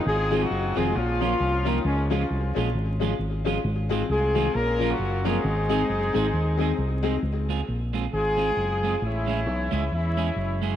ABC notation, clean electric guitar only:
X:1
M:4/4
L:1/8
Q:"Swing" 1/4=134
K:Db
V:1 name="Clean electric guitar"
z [E,A,CF] z [E,A,CF] z [F,B,DF] z [F,B,DF] | z [F,A,DF] z [F,A,DF] z [F,A,DF] z [F,A,DF] | z [E,A,CF] z [E,A,CF] z [F,B,DF] z [F,B,DF] | z [A,CEA] z [A,CEA] z [A,CEA] z [A,CEA] |
z [A,CFA] z [A,CFA] z [A,CFA] z [A,CFA] | z [^G,^C=E^G] z [G,CEG] z [G,CEG] z [G,CEG] |]